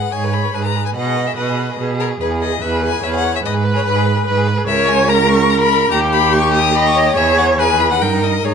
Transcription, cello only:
0, 0, Header, 1, 2, 480
1, 0, Start_track
1, 0, Key_signature, 5, "minor"
1, 0, Tempo, 414079
1, 1111, Time_signature, 3, 2, 24, 8
1, 7824, Tempo, 423131
1, 9857, End_track
2, 0, Start_track
2, 0, Title_t, "Cello"
2, 0, Program_c, 0, 42
2, 144, Note_on_c, 0, 44, 97
2, 571, Note_off_c, 0, 44, 0
2, 626, Note_on_c, 0, 44, 89
2, 1053, Note_off_c, 0, 44, 0
2, 1111, Note_on_c, 0, 47, 95
2, 1537, Note_off_c, 0, 47, 0
2, 1592, Note_on_c, 0, 47, 97
2, 2020, Note_off_c, 0, 47, 0
2, 2083, Note_on_c, 0, 47, 88
2, 2507, Note_off_c, 0, 47, 0
2, 2564, Note_on_c, 0, 40, 98
2, 2984, Note_off_c, 0, 40, 0
2, 3035, Note_on_c, 0, 40, 104
2, 3461, Note_off_c, 0, 40, 0
2, 3520, Note_on_c, 0, 40, 102
2, 3941, Note_off_c, 0, 40, 0
2, 3993, Note_on_c, 0, 44, 107
2, 4412, Note_off_c, 0, 44, 0
2, 4469, Note_on_c, 0, 44, 113
2, 4889, Note_off_c, 0, 44, 0
2, 4938, Note_on_c, 0, 44, 109
2, 5361, Note_off_c, 0, 44, 0
2, 5411, Note_on_c, 0, 37, 116
2, 6809, Note_off_c, 0, 37, 0
2, 6855, Note_on_c, 0, 39, 121
2, 8267, Note_off_c, 0, 39, 0
2, 8302, Note_on_c, 0, 40, 108
2, 9259, Note_on_c, 0, 43, 100
2, 9276, Note_off_c, 0, 40, 0
2, 9739, Note_off_c, 0, 43, 0
2, 9745, Note_on_c, 0, 44, 93
2, 9857, Note_off_c, 0, 44, 0
2, 9857, End_track
0, 0, End_of_file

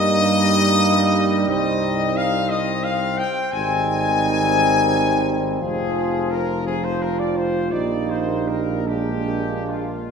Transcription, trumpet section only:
0, 0, Header, 1, 2, 480
1, 0, Start_track
1, 0, Key_signature, -3, "major"
1, 0, Tempo, 670391
1, 1059, Time_signature, 12, 3, 24, 8
1, 2030, Tempo, 696864
1, 5390, Tempo, 760456
1, 5870, Tempo, 825309
1, 6822, End_track
2, 0, Start_track
2, 0, Title_t, "Trumpet section"
2, 0, Program_c, 0, 61
2, 0, Note_on_c, 0, 75, 123
2, 1048, Note_off_c, 0, 75, 0
2, 1065, Note_on_c, 0, 75, 100
2, 1533, Note_off_c, 0, 75, 0
2, 1552, Note_on_c, 0, 77, 101
2, 1784, Note_on_c, 0, 75, 100
2, 1791, Note_off_c, 0, 77, 0
2, 2029, Note_off_c, 0, 75, 0
2, 2030, Note_on_c, 0, 77, 100
2, 2264, Note_off_c, 0, 77, 0
2, 2264, Note_on_c, 0, 79, 98
2, 2498, Note_on_c, 0, 80, 110
2, 2504, Note_off_c, 0, 79, 0
2, 3830, Note_off_c, 0, 80, 0
2, 3947, Note_on_c, 0, 68, 83
2, 4415, Note_off_c, 0, 68, 0
2, 4420, Note_on_c, 0, 70, 78
2, 4663, Note_off_c, 0, 70, 0
2, 4668, Note_on_c, 0, 68, 87
2, 4785, Note_off_c, 0, 68, 0
2, 4795, Note_on_c, 0, 72, 79
2, 4910, Note_off_c, 0, 72, 0
2, 4910, Note_on_c, 0, 70, 82
2, 5024, Note_on_c, 0, 74, 73
2, 5028, Note_off_c, 0, 70, 0
2, 5145, Note_off_c, 0, 74, 0
2, 5145, Note_on_c, 0, 72, 75
2, 5389, Note_on_c, 0, 74, 81
2, 5390, Note_off_c, 0, 72, 0
2, 5624, Note_off_c, 0, 74, 0
2, 5631, Note_on_c, 0, 72, 74
2, 5870, Note_on_c, 0, 70, 71
2, 5873, Note_off_c, 0, 72, 0
2, 6101, Note_on_c, 0, 67, 84
2, 6103, Note_off_c, 0, 70, 0
2, 6579, Note_on_c, 0, 65, 64
2, 6580, Note_off_c, 0, 67, 0
2, 6822, Note_off_c, 0, 65, 0
2, 6822, End_track
0, 0, End_of_file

